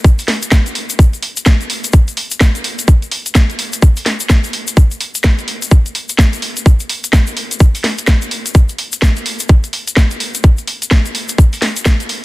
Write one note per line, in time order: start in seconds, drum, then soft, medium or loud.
0.04 kick loud
0.04 shaker medium
0.19 open hi-hat medium
0.19 shaker soft
0.28 snare medium
0.28 open hi-hat loud
0.42 closed hi-hat medium
0.42 shaker medium
0.52 kick loud
0.52 snare loud
0.52 shaker medium
0.66 closed hi-hat medium
0.66 shaker soft
0.75 open hi-hat loud
0.90 closed hi-hat medium
0.90 shaker medium
0.99 kick loud
0.99 shaker medium
1.13 closed hi-hat soft
1.13 shaker soft
1.23 open hi-hat loud
1.37 closed hi-hat medium
1.37 shaker medium
1.46 kick loud
1.46 snare loud
1.46 shaker medium
1.61 closed hi-hat soft
1.61 shaker soft
1.70 open hi-hat loud
1.84 closed hi-hat medium
1.84 shaker medium
1.93 kick loud
1.93 shaker medium
2.08 closed hi-hat medium
2.08 shaker soft
2.17 open hi-hat loud
2.31 closed hi-hat medium
2.31 shaker medium
2.41 kick loud
2.41 snare loud
2.41 shaker medium
2.55 closed hi-hat medium
2.55 shaker soft
2.64 open hi-hat loud
2.79 closed hi-hat medium
2.79 shaker medium
2.88 kick loud
2.88 shaker medium
3.02 closed hi-hat soft
3.02 shaker soft
3.12 open hi-hat loud
3.26 closed hi-hat medium
3.26 shaker medium
3.35 kick loud
3.35 snare loud
3.35 shaker medium
3.50 closed hi-hat soft
3.50 shaker soft
3.59 open hi-hat loud
3.73 closed hi-hat medium
3.73 shaker medium
3.82 kick loud
3.82 shaker medium
3.96 open hi-hat medium
3.96 shaker soft
4.06 snare medium
4.06 open hi-hat loud
4.20 closed hi-hat medium
4.20 shaker medium
4.30 kick loud
4.30 snare loud
4.30 shaker medium
4.44 closed hi-hat medium
4.44 shaker soft
4.53 open hi-hat loud
4.68 closed hi-hat medium
4.68 shaker medium
4.77 kick loud
4.77 shaker medium
4.91 closed hi-hat soft
4.91 shaker soft
5.01 open hi-hat loud
5.15 closed hi-hat medium
5.15 shaker medium
5.23 kick loud
5.23 snare loud
5.23 shaker medium
5.39 closed hi-hat soft
5.39 shaker soft
5.48 open hi-hat loud
5.62 closed hi-hat medium
5.62 shaker medium
5.71 kick loud
5.71 shaker medium
5.86 closed hi-hat medium
5.86 shaker soft
5.95 open hi-hat loud
6.09 closed hi-hat medium
6.09 shaker medium
6.18 kick loud
6.18 snare loud
6.18 shaker medium
6.33 closed hi-hat medium
6.33 shaker soft
6.42 open hi-hat loud
6.57 closed hi-hat medium
6.57 shaker medium
6.66 kick loud
6.66 shaker medium
6.80 closed hi-hat soft
6.80 shaker soft
6.89 open hi-hat loud
7.04 closed hi-hat medium
7.04 shaker medium
7.13 kick loud
7.13 snare loud
7.13 shaker medium
7.27 closed hi-hat soft
7.27 shaker soft
7.37 open hi-hat loud
7.51 closed hi-hat medium
7.51 shaker medium
7.60 kick loud
7.60 shaker medium
7.75 open hi-hat medium
7.75 shaker soft
7.84 snare medium
7.84 open hi-hat loud
7.98 closed hi-hat medium
7.98 shaker medium
8.07 kick loud
8.07 snare loud
8.07 shaker medium
8.22 closed hi-hat medium
8.22 shaker soft
8.31 open hi-hat loud
8.46 closed hi-hat medium
8.46 shaker medium
8.55 kick loud
8.55 shaker medium
8.69 closed hi-hat soft
8.69 shaker soft
8.78 open hi-hat loud
8.92 closed hi-hat medium
8.92 shaker medium
9.02 kick loud
9.02 snare loud
9.02 shaker medium
9.16 closed hi-hat soft
9.16 shaker soft
9.26 open hi-hat loud
9.40 closed hi-hat medium
9.40 shaker medium
9.48 kick loud
9.48 shaker medium
9.64 closed hi-hat medium
9.64 shaker soft
9.73 open hi-hat loud
9.87 closed hi-hat medium
9.87 shaker medium
9.97 kick loud
9.97 snare loud
9.97 shaker medium
10.11 closed hi-hat medium
10.11 shaker soft
10.20 open hi-hat loud
10.35 closed hi-hat medium
10.35 shaker medium
10.43 kick loud
10.43 shaker medium
10.58 closed hi-hat soft
10.58 shaker soft
10.67 open hi-hat loud
10.82 closed hi-hat medium
10.82 shaker medium
10.91 kick loud
10.91 snare loud
10.91 shaker medium
11.06 closed hi-hat soft
11.06 shaker soft
11.15 open hi-hat loud
11.29 closed hi-hat medium
11.29 shaker medium
11.38 kick loud
11.38 shaker medium
11.53 open hi-hat medium
11.53 shaker soft
11.62 snare medium
11.62 open hi-hat loud
11.77 closed hi-hat medium
11.77 shaker medium
11.85 kick loud
11.85 snare loud
11.85 shaker medium
12.00 closed hi-hat medium
12.00 shaker soft
12.09 open hi-hat loud